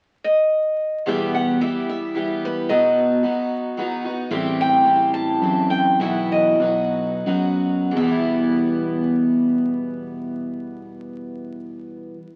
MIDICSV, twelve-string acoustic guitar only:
0, 0, Header, 1, 2, 480
1, 0, Start_track
1, 0, Key_signature, 1, "minor"
1, 0, Tempo, 543971
1, 934, Time_signature, 3, 2, 24, 8
1, 4293, Tempo, 569801
1, 5253, Tempo, 612245
1, 5733, Tempo, 652884
1, 6213, Tempo, 708383
1, 6693, Tempo, 741656
1, 9528, End_track
2, 0, Start_track
2, 0, Title_t, "Twelve-string acoustic guitar"
2, 0, Program_c, 0, 25
2, 934, Note_on_c, 0, 40, 64
2, 934, Note_on_c, 0, 47, 61
2, 938, Note_on_c, 0, 52, 68
2, 938, Note_on_c, 0, 55, 68
2, 943, Note_on_c, 0, 59, 71
2, 945, Note_on_c, 0, 67, 76
2, 1403, Note_off_c, 0, 52, 0
2, 1411, Note_off_c, 0, 55, 0
2, 1414, Note_off_c, 0, 40, 0
2, 1414, Note_off_c, 0, 47, 0
2, 1414, Note_on_c, 0, 52, 45
2, 1420, Note_off_c, 0, 67, 0
2, 1422, Note_on_c, 0, 55, 48
2, 1427, Note_off_c, 0, 59, 0
2, 1431, Note_on_c, 0, 59, 49
2, 1434, Note_on_c, 0, 67, 52
2, 1883, Note_off_c, 0, 52, 0
2, 1890, Note_off_c, 0, 55, 0
2, 1893, Note_off_c, 0, 59, 0
2, 1894, Note_on_c, 0, 52, 48
2, 1900, Note_off_c, 0, 67, 0
2, 1901, Note_on_c, 0, 55, 50
2, 1904, Note_on_c, 0, 59, 53
2, 1910, Note_on_c, 0, 67, 54
2, 2368, Note_off_c, 0, 59, 0
2, 2373, Note_off_c, 0, 52, 0
2, 2373, Note_on_c, 0, 47, 69
2, 2376, Note_off_c, 0, 55, 0
2, 2376, Note_on_c, 0, 54, 66
2, 2379, Note_on_c, 0, 59, 71
2, 2382, Note_off_c, 0, 67, 0
2, 2385, Note_on_c, 0, 63, 67
2, 2391, Note_on_c, 0, 66, 69
2, 2839, Note_off_c, 0, 54, 0
2, 2847, Note_off_c, 0, 59, 0
2, 2849, Note_on_c, 0, 54, 50
2, 2850, Note_off_c, 0, 63, 0
2, 2852, Note_off_c, 0, 47, 0
2, 2856, Note_off_c, 0, 66, 0
2, 2857, Note_on_c, 0, 59, 48
2, 2860, Note_on_c, 0, 63, 48
2, 2866, Note_on_c, 0, 66, 54
2, 3318, Note_off_c, 0, 54, 0
2, 3329, Note_on_c, 0, 54, 59
2, 3330, Note_off_c, 0, 59, 0
2, 3335, Note_off_c, 0, 63, 0
2, 3338, Note_off_c, 0, 66, 0
2, 3341, Note_on_c, 0, 59, 59
2, 3345, Note_on_c, 0, 63, 63
2, 3355, Note_on_c, 0, 66, 65
2, 3559, Note_off_c, 0, 66, 0
2, 3566, Note_off_c, 0, 63, 0
2, 3569, Note_off_c, 0, 54, 0
2, 3570, Note_on_c, 0, 66, 47
2, 3575, Note_off_c, 0, 59, 0
2, 3577, Note_on_c, 0, 63, 43
2, 3586, Note_on_c, 0, 59, 35
2, 3799, Note_on_c, 0, 45, 72
2, 3800, Note_off_c, 0, 59, 0
2, 3802, Note_on_c, 0, 52, 77
2, 3803, Note_on_c, 0, 55, 79
2, 3806, Note_off_c, 0, 63, 0
2, 3807, Note_off_c, 0, 66, 0
2, 3809, Note_on_c, 0, 60, 85
2, 3811, Note_on_c, 0, 67, 80
2, 4263, Note_off_c, 0, 52, 0
2, 4267, Note_off_c, 0, 55, 0
2, 4274, Note_on_c, 0, 52, 48
2, 4275, Note_off_c, 0, 60, 0
2, 4278, Note_on_c, 0, 55, 48
2, 4279, Note_off_c, 0, 67, 0
2, 4286, Note_on_c, 0, 60, 50
2, 4287, Note_off_c, 0, 45, 0
2, 4289, Note_on_c, 0, 67, 54
2, 4748, Note_off_c, 0, 52, 0
2, 4756, Note_off_c, 0, 55, 0
2, 4758, Note_on_c, 0, 52, 49
2, 4760, Note_off_c, 0, 60, 0
2, 4762, Note_off_c, 0, 67, 0
2, 4772, Note_on_c, 0, 60, 52
2, 4773, Note_on_c, 0, 67, 54
2, 5244, Note_off_c, 0, 52, 0
2, 5247, Note_on_c, 0, 47, 69
2, 5254, Note_on_c, 0, 52, 72
2, 5255, Note_off_c, 0, 60, 0
2, 5255, Note_on_c, 0, 59, 67
2, 5257, Note_off_c, 0, 67, 0
2, 5259, Note_on_c, 0, 64, 75
2, 5263, Note_on_c, 0, 66, 75
2, 5712, Note_off_c, 0, 52, 0
2, 5715, Note_on_c, 0, 54, 45
2, 5721, Note_off_c, 0, 59, 0
2, 5726, Note_off_c, 0, 66, 0
2, 5729, Note_off_c, 0, 47, 0
2, 5730, Note_off_c, 0, 64, 0
2, 5730, Note_on_c, 0, 59, 50
2, 5733, Note_on_c, 0, 63, 47
2, 5735, Note_on_c, 0, 66, 52
2, 6197, Note_off_c, 0, 54, 0
2, 6205, Note_off_c, 0, 59, 0
2, 6206, Note_off_c, 0, 63, 0
2, 6206, Note_on_c, 0, 54, 60
2, 6214, Note_off_c, 0, 66, 0
2, 6214, Note_on_c, 0, 59, 58
2, 6215, Note_on_c, 0, 63, 60
2, 6222, Note_on_c, 0, 66, 62
2, 6648, Note_on_c, 0, 40, 68
2, 6682, Note_on_c, 0, 47, 67
2, 6689, Note_off_c, 0, 54, 0
2, 6693, Note_off_c, 0, 59, 0
2, 6693, Note_off_c, 0, 63, 0
2, 6697, Note_off_c, 0, 66, 0
2, 6710, Note_on_c, 0, 52, 67
2, 6732, Note_on_c, 0, 55, 76
2, 6756, Note_on_c, 0, 59, 74
2, 6778, Note_on_c, 0, 64, 69
2, 9380, Note_off_c, 0, 40, 0
2, 9413, Note_off_c, 0, 47, 0
2, 9440, Note_off_c, 0, 52, 0
2, 9463, Note_off_c, 0, 55, 0
2, 9487, Note_off_c, 0, 59, 0
2, 9509, Note_off_c, 0, 64, 0
2, 9528, End_track
0, 0, End_of_file